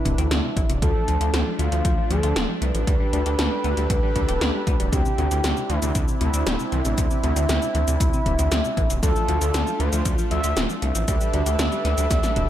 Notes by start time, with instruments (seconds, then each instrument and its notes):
Already playing: supersaw synth E3 D4 B4, analog synth lead E4, downlifter
0.05 detuned saw bass D1, clean electric guitar C3, kick, closed hi-hat
0.18 detuned saw bass D2, clean electric guitar C4, closed hi-hat
0.31 detuned saw bass D2, clean electric guitar G3, snare, closed hi-hat
0.44 clean electric guitar C3
0.57 detuned saw bass A1, clean electric guitar E3, kick, closed hi-hat
0.69 detuned saw bass D1, clean electric guitar C3, closed hi-hat
0.82 detuned saw bass D2, clean electric guitar F3, supersaw synth F3 A3, analog synth lead A4, kick, closed hi-hat
0.95 clean electric guitar F3
1.08 detuned saw bass D2, clean electric guitar F3, closed hi-hat
1.20 detuned saw bass D2, clean electric guitar F4, closed hi-hat
1.33 detuned saw bass D2, clean electric guitar C4, snare, closed hi-hat
1.46 clean electric guitar F3
1.59 detuned saw bass D2, clean electric guitar A3, analog synth lead F4, closed hi-hat
1.72 detuned saw bass D2, clean electric guitar F3, closed hi-hat
1.85 detuned saw bass D2, clean electric guitar F3, kick, closed hi-hat
1.98 clean electric guitar F3
2.10 detuned saw bass D2, clean electric guitar F3, analog synth lead A4, closed hi-hat
2.23 detuned saw bass D2, clean electric guitar F4, closed hi-hat
2.36 detuned saw bass D1, clean electric guitar C4, snare, closed hi-hat
2.49 clean electric guitar F3
2.62 detuned saw bass C2, clean electric guitar A3, analog synth lead B4, closed hi-hat
2.74 detuned saw bass A1, clean electric guitar F3, closed hi-hat
2.87 detuned saw bass D2, supersaw synth D3 G4 A4 B4, clean electric guitar G3, kick, closed hi-hat
3.00 clean electric guitar G3
3.13 detuned saw bass D2, clean electric guitar G3, closed hi-hat
3.26 detuned saw bass D2, clean electric guitar G4, closed hi-hat
3.39 detuned saw bass D2, clean electric guitar D4, snare, closed hi-hat
3.52 clean electric guitar G3
3.64 detuned saw bass D2, clean electric guitar B3, closed hi-hat
3.77 detuned saw bass D2, clean electric guitar G3, closed hi-hat
3.90 detuned saw bass D2, clean electric guitar G3, kick, closed hi-hat
4.03 clean electric guitar G3
4.16 detuned saw bass D2, clean electric guitar G3, kick, closed hi-hat
4.28 detuned saw bass D1, clean electric guitar G4, closed hi-hat
4.41 detuned saw bass D2, clean electric guitar D4, snare, closed hi-hat
4.54 clean electric guitar G3
4.67 detuned saw bass D2, clean electric guitar B3, kick, closed hi-hat
4.80 detuned saw bass D1, clean electric guitar G3, closed hi-hat
4.92 detuned saw bass D2, clean electric guitar C3, supersaw synth C4 E4, analog synth lead G4, kick, closed hi-hat, cabasa
5.05 clean electric guitar C3, cabasa
5.18 detuned saw bass D2, clean electric guitar C3, closed hi-hat
5.31 detuned saw bass D2, clean electric guitar C4, closed hi-hat, cabasa
5.44 detuned saw bass D2, clean electric guitar G3, snare, closed hi-hat, cabasa
5.57 clean electric guitar C3, cabasa
5.69 detuned saw bass D2, clean electric guitar E3, analog synth lead E4, closed hi-hat
5.82 detuned saw bass D2, clean electric guitar C3, closed hi-hat, cabasa
5.95 detuned saw bass D2, clean electric guitar C3, kick, closed hi-hat, cabasa
6.08 clean electric guitar C3, cabasa
6.21 detuned saw bass D2, clean electric guitar C3, analog synth lead E4, closed hi-hat
6.34 detuned saw bass D2, clean electric guitar C4, closed hi-hat, cabasa
6.46 detuned saw bass D1, clean electric guitar G3, snare, closed hi-hat, cabasa
6.59 clean electric guitar C3, cabasa
6.72 detuned saw bass C2, clean electric guitar E3, analog synth lead E4, closed hi-hat
6.85 detuned saw bass A1, clean electric guitar C3, closed hi-hat, cabasa
6.98 detuned saw bass D2, clean electric guitar C3, kick, closed hi-hat, cabasa
7.11 clean electric guitar C3, cabasa
7.23 detuned saw bass D2, clean electric guitar C3, closed hi-hat
7.36 detuned saw bass D2, clean electric guitar C4, closed hi-hat, cabasa
7.49 detuned saw bass D2, clean electric guitar G3, snare, closed hi-hat, cabasa
7.62 clean electric guitar C3, cabasa
7.75 detuned saw bass D2, clean electric guitar E3, closed hi-hat
7.88 detuned saw bass D2, clean electric guitar C3, closed hi-hat, cabasa
8.00 detuned saw bass D2, clean electric guitar C3, kick, closed hi-hat, cabasa
8.13 clean electric guitar C3, cabasa
8.26 detuned saw bass D1, clean electric guitar C3, kick, closed hi-hat
8.39 detuned saw bass D2, clean electric guitar C4, closed hi-hat, cabasa
8.52 detuned saw bass D2, clean electric guitar G3, snare, closed hi-hat, cabasa
8.64 clean electric guitar C3, cabasa
8.77 detuned saw bass A1, clean electric guitar E3, kick, closed hi-hat
8.90 detuned saw bass D1, clean electric guitar C3, closed hi-hat, cabasa
9.03 detuned saw bass D2, clean electric guitar F3, supersaw synth A3 D4 F4, analog synth lead A4, kick, closed hi-hat, cabasa
9.16 clean electric guitar F3, cabasa
9.28 detuned saw bass D2, clean electric guitar F3, closed hi-hat
9.41 detuned saw bass D2, clean electric guitar F4, closed hi-hat, cabasa
9.54 detuned saw bass D2, clean electric guitar C4, snare, closed hi-hat, cabasa
9.67 clean electric guitar F3, cabasa
9.80 detuned saw bass D2, clean electric guitar A3, analog synth lead C5, closed hi-hat
9.93 detuned saw bass D2, clean electric guitar F3, closed hi-hat, cabasa
10.05 detuned saw bass D2, clean electric guitar F3, kick, closed hi-hat, cabasa
10.18 clean electric guitar F3, cabasa
10.31 detuned saw bass D2, clean electric guitar F3, analog synth lead E5, closed hi-hat
10.44 detuned saw bass D2, clean electric guitar F4, closed hi-hat, cabasa
10.57 detuned saw bass D1, clean electric guitar C4, snare, closed hi-hat, cabasa
10.70 clean electric guitar F3, cabasa
10.82 detuned saw bass C2, clean electric guitar A3, analog synth lead E5, closed hi-hat
10.95 detuned saw bass A1, clean electric guitar F3, closed hi-hat, cabasa
11.08 detuned saw bass D2, supersaw synth D3 D4 G4 A4 B4, clean electric guitar G3, kick, closed hi-hat, cabasa
11.21 clean electric guitar G3, cabasa
11.33 detuned saw bass D2, clean electric guitar G3, closed hi-hat
11.46 detuned saw bass D2, clean electric guitar G4, closed hi-hat, cabasa
11.59 detuned saw bass D2, clean electric guitar D4, snare, closed hi-hat, cabasa
11.72 clean electric guitar G3, cabasa
11.85 detuned saw bass D2, clean electric guitar B3, snare, closed hi-hat
11.98 detuned saw bass D2, clean electric guitar G3, closed hi-hat, cabasa
12.11 detuned saw bass D2, clean electric guitar G3, kick, snare, closed hi-hat, cabasa
12.23 clean electric guitar G3, snare, cabasa
12.36 detuned saw bass D1, clean electric guitar G3, kick, closed hi-hat